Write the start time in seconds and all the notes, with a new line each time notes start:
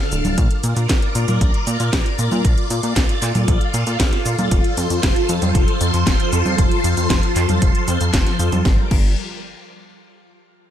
Already playing: D3 D4 A4 F5 A5
0.12 D1, closed hi-hat, cabasa
0.25 D1, closed hi-hat, high conga, cabasa
0.38 A#1 F4 A#4 D5, kick, closed hi-hat, cabasa
0.51 closed hi-hat
0.64 A#2, closed hi-hat, cabasa
0.77 A#2, closed hi-hat, cabasa
0.89 A#1, kick, snare, clap, closed hi-hat, cabasa
1.02 closed hi-hat
1.15 A#2, closed hi-hat, cabasa
1.28 A#2, closed hi-hat, high conga, cabasa
1.41 A#1, kick, closed hi-hat, cabasa
1.54 closed hi-hat
1.67 A#2, closed hi-hat, cabasa
1.80 A#2, closed hi-hat, cabasa
1.93 A#1, kick, snare, clap, closed hi-hat, cabasa
2.06 closed hi-hat
2.19 A#2, closed hi-hat, cabasa
2.32 A#2, high conga, cabasa
2.45 A#1 A4, kick, closed hi-hat, cabasa
2.58 closed hi-hat
2.70 A#2, closed hi-hat, cabasa
2.83 A#2, closed hi-hat, cabasa
2.96 A#1, kick, snare, clap, closed hi-hat, cabasa
3.09 closed hi-hat
3.22 A#2, clap, closed hi-hat, cabasa
3.35 A#2, closed hi-hat, high conga, cabasa
3.48 A#1, kick, closed hi-hat, cabasa
3.61 closed hi-hat
3.74 A#2, closed hi-hat, cabasa
3.87 A#2, closed hi-hat, cabasa
4.00 A#1, kick, snare, clap, closed hi-hat, cabasa
4.13 snare, closed hi-hat
4.26 A#2, closed hi-hat, cabasa
4.39 A#2, closed hi-hat, high conga, cabasa
4.51 F1 F3 C5 C6, kick, closed hi-hat, cabasa
4.64 closed hi-hat
4.77 F2, closed hi-hat, cabasa
4.90 F2, closed hi-hat, cabasa
5.03 F1, kick, snare, clap, closed hi-hat, cabasa
5.16 closed hi-hat
5.29 F2, closed hi-hat, cabasa
5.42 F2, closed hi-hat, high conga, cabasa
5.55 F1, kick, closed hi-hat, cabasa
5.68 closed hi-hat
5.81 F2, closed hi-hat, cabasa
5.94 F2, closed hi-hat, cabasa
6.07 F1, kick, snare, clap, closed hi-hat, cabasa
6.20 closed hi-hat
6.33 F2, closed hi-hat, cabasa
6.45 F2, high conga, cabasa
6.58 F1, kick, closed hi-hat, cabasa
6.71 closed hi-hat
6.84 F2, closed hi-hat, cabasa
6.97 F2, closed hi-hat, cabasa
7.10 F1, kick, snare, clap, closed hi-hat, cabasa
7.23 closed hi-hat
7.36 F2, clap, closed hi-hat, cabasa
7.49 F2, closed hi-hat, high conga, cabasa
7.62 F1, kick, closed hi-hat, cabasa
7.75 closed hi-hat
7.88 F2, closed hi-hat, cabasa
8.01 F2, closed hi-hat, cabasa
8.14 F1, kick, snare, clap, closed hi-hat, cabasa
8.27 snare, closed hi-hat
8.39 F2, closed hi-hat, cabasa
8.52 F2, closed hi-hat, high conga, cabasa
8.65 G1 G3 G4 A#4 D5 D6, kick, snare
8.91 G1, kick, crash